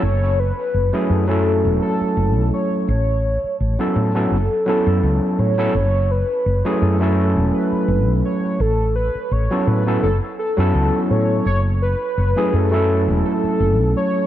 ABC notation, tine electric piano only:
X:1
M:4/4
L:1/16
Q:"Swing 16ths" 1/4=84
K:F#m
V:1 name="Tine electric piano"
z4 z [F,A,CEG]2 [F,A,CEA]8- [F,A,CEA] | z4 z [F,B,CEA]2 [F,B,CEA] z2 [F,B,CEA]4- [F,B,CEA] [F,B,CEA] | z4 z [F,A,CEG]2 [F,A,CEA]8- [F,A,CEA] | z4 z [F,B,CEA]2 [F,B,CEA] z3 [F,B,CEA]4- [F,B,CEA] |
z4 z [F,A,CEG]2 [F,A,CEA]8- [F,A,CEA] |]